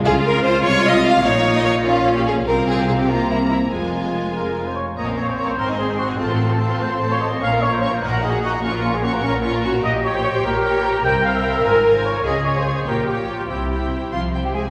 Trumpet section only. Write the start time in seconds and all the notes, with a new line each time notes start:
4.34 A#4
4.65 C5
4.75 C#5
4.97 D#5
5.17 C#5
5.28 C5
5.38 C#5
5.49 C5
5.58 A#4
5.79 G#4
5.98 F#4
6.19 F4
6.50 A4
6.60 F4
6.80 C5
7.11 C#5
7.20 D#5
7.41 F5
7.61 C#5
7.72 C5
7.82 C#5
7.93 C5
8.02 A#4
8.23 G#4
8.43 F#4
8.63 F4
8.94 G#4
9.04 F#4
9.23 A#4
9.83 D#5
10.04 C#5
10.14 C5
10.24 C#5
10.34 C5
10.44 A#4
10.84 A#5
11.03 G5
11.24 F5
11.35 E5
11.44 F5
11.55 E5
11.64 A#4
11.95 C5
12.04 C#5
12.24 D#5
12.45 C#5
12.56 C5
12.66 C#5
12.77 C5
12.87 A#4
13.07 G4
13.28 F4
13.49 E4